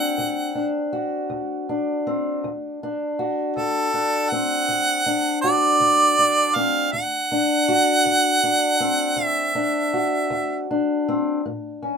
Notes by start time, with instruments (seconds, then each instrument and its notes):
Already playing: steel-string acoustic guitar C4 D4 F#4, harmonica F#5
0.18 steel-string acoustic guitar D2
0.55 steel-string acoustic guitar D4
0.93 steel-string acoustic guitar F#4
1.30 steel-string acoustic guitar D2
1.69 steel-string acoustic guitar D4
2.07 steel-string acoustic guitar C4
2.44 steel-string acoustic guitar D2
2.83 steel-string acoustic guitar D4
3.19 steel-string acoustic guitar F#4
3.56 steel-string acoustic guitar D2, harmonica A4
3.94 steel-string acoustic guitar D4
4.30 steel-string acoustic guitar C4, harmonica F#5
4.68 steel-string acoustic guitar D2
5.06 steel-string acoustic guitar D4
5.42 steel-string acoustic guitar F#4, harmonica D5
5.80 steel-string acoustic guitar D2
6.19 steel-string acoustic guitar D4
6.55 steel-string acoustic guitar C4, harmonica F5
6.93 steel-string acoustic guitar D2, harmonica F#5
7.32 steel-string acoustic guitar D4
7.68 steel-string acoustic guitar F#4
8.05 steel-string acoustic guitar D2
8.43 steel-string acoustic guitar D4
8.80 steel-string acoustic guitar C4
9.16 steel-string acoustic guitar D2
9.26 harmonica E5
9.55 steel-string acoustic guitar D4
9.93 steel-string acoustic guitar F#4
10.30 steel-string acoustic guitar D2
10.71 steel-string acoustic guitar D4
11.08 steel-string acoustic guitar C4
11.46 steel-string acoustic guitar A2
11.83 steel-string acoustic guitar C#4